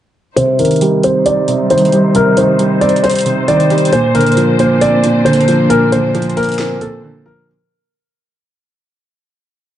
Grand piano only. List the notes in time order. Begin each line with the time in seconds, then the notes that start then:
0.36 C5
0.59 A#4
1.04 C5
1.26 D5
1.70 C5
2.16 A#4
2.38 C5
2.81 D5
3.04 C5
3.48 D5
3.93 C5
4.15 A#4
4.60 C5
4.81 D5
5.25 C5
5.70 A#4
5.92 C5
6.37 A#4
6.81 A4
7.26 A#4